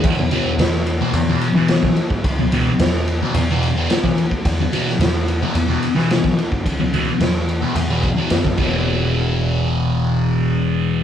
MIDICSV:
0, 0, Header, 1, 5, 480
1, 0, Start_track
1, 0, Tempo, 551978
1, 28, Time_signature, 4, 2, 24, 8
1, 9595, End_track
2, 0, Start_track
2, 0, Title_t, "Distorted electric guitar"
2, 0, Program_c, 0, 30
2, 278, Note_on_c, 0, 40, 77
2, 281, Note_on_c, 0, 47, 82
2, 291, Note_on_c, 0, 52, 83
2, 428, Note_off_c, 0, 40, 0
2, 429, Note_off_c, 0, 47, 0
2, 434, Note_off_c, 0, 52, 0
2, 877, Note_on_c, 0, 52, 79
2, 882, Note_on_c, 0, 47, 73
2, 888, Note_on_c, 0, 40, 67
2, 990, Note_off_c, 0, 40, 0
2, 990, Note_off_c, 0, 52, 0
2, 993, Note_off_c, 0, 47, 0
2, 1123, Note_on_c, 0, 52, 92
2, 1124, Note_on_c, 0, 47, 74
2, 1133, Note_on_c, 0, 40, 68
2, 1269, Note_off_c, 0, 47, 0
2, 1269, Note_off_c, 0, 52, 0
2, 1274, Note_off_c, 0, 40, 0
2, 1357, Note_on_c, 0, 52, 68
2, 1360, Note_on_c, 0, 47, 62
2, 1367, Note_on_c, 0, 40, 66
2, 1506, Note_off_c, 0, 52, 0
2, 1507, Note_off_c, 0, 47, 0
2, 1510, Note_off_c, 0, 40, 0
2, 2194, Note_on_c, 0, 40, 70
2, 2202, Note_on_c, 0, 47, 77
2, 2204, Note_on_c, 0, 52, 78
2, 2343, Note_off_c, 0, 40, 0
2, 2347, Note_off_c, 0, 47, 0
2, 2348, Note_off_c, 0, 52, 0
2, 2801, Note_on_c, 0, 52, 78
2, 2809, Note_on_c, 0, 47, 75
2, 2810, Note_on_c, 0, 40, 74
2, 2910, Note_off_c, 0, 52, 0
2, 2915, Note_off_c, 0, 40, 0
2, 2915, Note_off_c, 0, 47, 0
2, 3043, Note_on_c, 0, 52, 84
2, 3047, Note_on_c, 0, 47, 84
2, 3052, Note_on_c, 0, 40, 72
2, 3187, Note_off_c, 0, 52, 0
2, 3189, Note_off_c, 0, 47, 0
2, 3192, Note_off_c, 0, 40, 0
2, 3274, Note_on_c, 0, 52, 74
2, 3278, Note_on_c, 0, 47, 65
2, 3279, Note_on_c, 0, 40, 61
2, 3423, Note_off_c, 0, 52, 0
2, 3425, Note_off_c, 0, 40, 0
2, 3425, Note_off_c, 0, 47, 0
2, 4107, Note_on_c, 0, 40, 72
2, 4111, Note_on_c, 0, 47, 74
2, 4118, Note_on_c, 0, 52, 78
2, 4259, Note_off_c, 0, 40, 0
2, 4261, Note_off_c, 0, 47, 0
2, 4264, Note_off_c, 0, 52, 0
2, 4715, Note_on_c, 0, 52, 74
2, 4717, Note_on_c, 0, 47, 75
2, 4721, Note_on_c, 0, 40, 65
2, 4818, Note_off_c, 0, 40, 0
2, 4822, Note_off_c, 0, 47, 0
2, 4827, Note_off_c, 0, 52, 0
2, 4940, Note_on_c, 0, 52, 93
2, 4947, Note_on_c, 0, 47, 78
2, 4952, Note_on_c, 0, 40, 70
2, 5095, Note_off_c, 0, 52, 0
2, 5099, Note_off_c, 0, 47, 0
2, 5101, Note_off_c, 0, 40, 0
2, 5175, Note_on_c, 0, 52, 77
2, 5183, Note_on_c, 0, 47, 65
2, 5188, Note_on_c, 0, 40, 58
2, 5333, Note_off_c, 0, 52, 0
2, 5337, Note_off_c, 0, 47, 0
2, 5339, Note_off_c, 0, 40, 0
2, 6024, Note_on_c, 0, 40, 71
2, 6026, Note_on_c, 0, 47, 83
2, 6030, Note_on_c, 0, 52, 82
2, 6178, Note_off_c, 0, 40, 0
2, 6179, Note_off_c, 0, 47, 0
2, 6181, Note_off_c, 0, 52, 0
2, 6622, Note_on_c, 0, 52, 76
2, 6626, Note_on_c, 0, 47, 67
2, 6629, Note_on_c, 0, 40, 68
2, 6740, Note_off_c, 0, 40, 0
2, 6742, Note_off_c, 0, 52, 0
2, 6743, Note_off_c, 0, 47, 0
2, 6867, Note_on_c, 0, 52, 93
2, 6873, Note_on_c, 0, 47, 83
2, 6881, Note_on_c, 0, 40, 71
2, 7020, Note_off_c, 0, 52, 0
2, 7023, Note_off_c, 0, 47, 0
2, 7028, Note_off_c, 0, 40, 0
2, 7100, Note_on_c, 0, 52, 66
2, 7111, Note_on_c, 0, 40, 62
2, 7111, Note_on_c, 0, 47, 65
2, 7258, Note_off_c, 0, 52, 0
2, 7263, Note_off_c, 0, 40, 0
2, 7263, Note_off_c, 0, 47, 0
2, 7454, Note_on_c, 0, 40, 86
2, 7471, Note_on_c, 0, 47, 81
2, 7491, Note_on_c, 0, 52, 93
2, 9595, Note_off_c, 0, 40, 0
2, 9595, Note_off_c, 0, 47, 0
2, 9595, Note_off_c, 0, 52, 0
2, 9595, End_track
3, 0, Start_track
3, 0, Title_t, "Picked electric bass"
3, 0, Program_c, 1, 34
3, 32, Note_on_c, 1, 40, 97
3, 216, Note_off_c, 1, 40, 0
3, 502, Note_on_c, 1, 40, 85
3, 875, Note_off_c, 1, 40, 0
3, 985, Note_on_c, 1, 40, 114
3, 1170, Note_off_c, 1, 40, 0
3, 1345, Note_on_c, 1, 52, 85
3, 1715, Note_off_c, 1, 52, 0
3, 1830, Note_on_c, 1, 44, 92
3, 1947, Note_on_c, 1, 37, 81
3, 1960, Note_off_c, 1, 44, 0
3, 2317, Note_off_c, 1, 37, 0
3, 2428, Note_on_c, 1, 40, 85
3, 2797, Note_off_c, 1, 40, 0
3, 2907, Note_on_c, 1, 40, 107
3, 3369, Note_off_c, 1, 40, 0
3, 3509, Note_on_c, 1, 52, 79
3, 3691, Note_off_c, 1, 52, 0
3, 3871, Note_on_c, 1, 40, 99
3, 4053, Note_off_c, 1, 40, 0
3, 4339, Note_on_c, 1, 40, 80
3, 4711, Note_off_c, 1, 40, 0
3, 4824, Note_on_c, 1, 40, 95
3, 5008, Note_off_c, 1, 40, 0
3, 5185, Note_on_c, 1, 52, 78
3, 5555, Note_off_c, 1, 52, 0
3, 5669, Note_on_c, 1, 44, 84
3, 5790, Note_off_c, 1, 44, 0
3, 5790, Note_on_c, 1, 37, 81
3, 6159, Note_off_c, 1, 37, 0
3, 6258, Note_on_c, 1, 40, 75
3, 6632, Note_off_c, 1, 40, 0
3, 6741, Note_on_c, 1, 40, 96
3, 7114, Note_off_c, 1, 40, 0
3, 7224, Note_on_c, 1, 42, 74
3, 7440, Note_off_c, 1, 42, 0
3, 7465, Note_on_c, 1, 28, 90
3, 9595, Note_off_c, 1, 28, 0
3, 9595, End_track
4, 0, Start_track
4, 0, Title_t, "Muted distorted electric guitar strokes"
4, 159, Note_on_c, 9, 29, 49
4, 246, Note_off_c, 9, 29, 0
4, 515, Note_on_c, 9, 29, 42
4, 602, Note_off_c, 9, 29, 0
4, 1001, Note_on_c, 9, 29, 43
4, 1088, Note_off_c, 9, 29, 0
4, 1595, Note_on_c, 9, 29, 49
4, 1682, Note_off_c, 9, 29, 0
4, 2079, Note_on_c, 9, 29, 45
4, 2166, Note_off_c, 9, 29, 0
4, 2443, Note_on_c, 9, 29, 40
4, 2530, Note_off_c, 9, 29, 0
4, 2925, Note_on_c, 9, 29, 39
4, 3012, Note_off_c, 9, 29, 0
4, 3514, Note_on_c, 9, 29, 46
4, 3601, Note_off_c, 9, 29, 0
4, 4002, Note_on_c, 9, 29, 47
4, 4089, Note_off_c, 9, 29, 0
4, 4348, Note_on_c, 9, 29, 42
4, 4435, Note_off_c, 9, 29, 0
4, 4828, Note_on_c, 9, 29, 44
4, 4915, Note_off_c, 9, 29, 0
4, 5423, Note_on_c, 9, 29, 50
4, 5510, Note_off_c, 9, 29, 0
4, 5907, Note_on_c, 9, 29, 49
4, 5994, Note_off_c, 9, 29, 0
4, 6264, Note_on_c, 9, 29, 42
4, 6351, Note_off_c, 9, 29, 0
4, 6751, Note_on_c, 9, 29, 40
4, 6838, Note_off_c, 9, 29, 0
4, 7345, Note_on_c, 9, 29, 47
4, 7432, Note_off_c, 9, 29, 0
4, 9595, End_track
5, 0, Start_track
5, 0, Title_t, "Drums"
5, 31, Note_on_c, 9, 49, 94
5, 33, Note_on_c, 9, 36, 116
5, 118, Note_off_c, 9, 49, 0
5, 120, Note_off_c, 9, 36, 0
5, 270, Note_on_c, 9, 51, 61
5, 357, Note_off_c, 9, 51, 0
5, 513, Note_on_c, 9, 51, 75
5, 520, Note_on_c, 9, 38, 97
5, 600, Note_off_c, 9, 51, 0
5, 607, Note_off_c, 9, 38, 0
5, 752, Note_on_c, 9, 51, 58
5, 839, Note_off_c, 9, 51, 0
5, 987, Note_on_c, 9, 51, 67
5, 1074, Note_off_c, 9, 51, 0
5, 1229, Note_on_c, 9, 51, 52
5, 1316, Note_off_c, 9, 51, 0
5, 1463, Note_on_c, 9, 51, 77
5, 1471, Note_on_c, 9, 38, 111
5, 1550, Note_off_c, 9, 51, 0
5, 1558, Note_off_c, 9, 38, 0
5, 1589, Note_on_c, 9, 36, 80
5, 1676, Note_off_c, 9, 36, 0
5, 1708, Note_on_c, 9, 51, 55
5, 1795, Note_off_c, 9, 51, 0
5, 1830, Note_on_c, 9, 36, 64
5, 1917, Note_off_c, 9, 36, 0
5, 1949, Note_on_c, 9, 51, 75
5, 1951, Note_on_c, 9, 36, 95
5, 2036, Note_off_c, 9, 51, 0
5, 2038, Note_off_c, 9, 36, 0
5, 2190, Note_on_c, 9, 51, 57
5, 2277, Note_off_c, 9, 51, 0
5, 2430, Note_on_c, 9, 51, 75
5, 2437, Note_on_c, 9, 38, 89
5, 2517, Note_off_c, 9, 51, 0
5, 2524, Note_off_c, 9, 38, 0
5, 2675, Note_on_c, 9, 51, 59
5, 2762, Note_off_c, 9, 51, 0
5, 2908, Note_on_c, 9, 51, 83
5, 2995, Note_off_c, 9, 51, 0
5, 3154, Note_on_c, 9, 51, 56
5, 3241, Note_off_c, 9, 51, 0
5, 3391, Note_on_c, 9, 51, 85
5, 3399, Note_on_c, 9, 38, 107
5, 3478, Note_off_c, 9, 51, 0
5, 3486, Note_off_c, 9, 38, 0
5, 3511, Note_on_c, 9, 36, 72
5, 3598, Note_off_c, 9, 36, 0
5, 3633, Note_on_c, 9, 51, 55
5, 3720, Note_off_c, 9, 51, 0
5, 3752, Note_on_c, 9, 36, 68
5, 3839, Note_off_c, 9, 36, 0
5, 3871, Note_on_c, 9, 51, 87
5, 3872, Note_on_c, 9, 36, 96
5, 3958, Note_off_c, 9, 51, 0
5, 3959, Note_off_c, 9, 36, 0
5, 4113, Note_on_c, 9, 51, 58
5, 4200, Note_off_c, 9, 51, 0
5, 4240, Note_on_c, 9, 38, 31
5, 4327, Note_off_c, 9, 38, 0
5, 4352, Note_on_c, 9, 51, 76
5, 4360, Note_on_c, 9, 38, 92
5, 4439, Note_off_c, 9, 51, 0
5, 4447, Note_off_c, 9, 38, 0
5, 4592, Note_on_c, 9, 51, 57
5, 4679, Note_off_c, 9, 51, 0
5, 4826, Note_on_c, 9, 51, 69
5, 4913, Note_off_c, 9, 51, 0
5, 5066, Note_on_c, 9, 51, 50
5, 5153, Note_off_c, 9, 51, 0
5, 5195, Note_on_c, 9, 38, 29
5, 5282, Note_off_c, 9, 38, 0
5, 5308, Note_on_c, 9, 51, 76
5, 5316, Note_on_c, 9, 38, 99
5, 5395, Note_off_c, 9, 51, 0
5, 5403, Note_off_c, 9, 38, 0
5, 5428, Note_on_c, 9, 36, 78
5, 5515, Note_off_c, 9, 36, 0
5, 5552, Note_on_c, 9, 51, 51
5, 5639, Note_off_c, 9, 51, 0
5, 5668, Note_on_c, 9, 36, 63
5, 5755, Note_off_c, 9, 36, 0
5, 5788, Note_on_c, 9, 36, 98
5, 5792, Note_on_c, 9, 51, 73
5, 5875, Note_off_c, 9, 36, 0
5, 5879, Note_off_c, 9, 51, 0
5, 6031, Note_on_c, 9, 51, 53
5, 6118, Note_off_c, 9, 51, 0
5, 6265, Note_on_c, 9, 51, 64
5, 6273, Note_on_c, 9, 38, 88
5, 6352, Note_off_c, 9, 51, 0
5, 6360, Note_off_c, 9, 38, 0
5, 6509, Note_on_c, 9, 51, 55
5, 6596, Note_off_c, 9, 51, 0
5, 6744, Note_on_c, 9, 51, 75
5, 6831, Note_off_c, 9, 51, 0
5, 6984, Note_on_c, 9, 51, 52
5, 6985, Note_on_c, 9, 36, 68
5, 7071, Note_off_c, 9, 51, 0
5, 7072, Note_off_c, 9, 36, 0
5, 7218, Note_on_c, 9, 51, 78
5, 7226, Note_on_c, 9, 38, 112
5, 7305, Note_off_c, 9, 51, 0
5, 7313, Note_off_c, 9, 38, 0
5, 7344, Note_on_c, 9, 36, 77
5, 7431, Note_off_c, 9, 36, 0
5, 7456, Note_on_c, 9, 49, 69
5, 7463, Note_on_c, 9, 36, 94
5, 7543, Note_off_c, 9, 49, 0
5, 7550, Note_off_c, 9, 36, 0
5, 9595, End_track
0, 0, End_of_file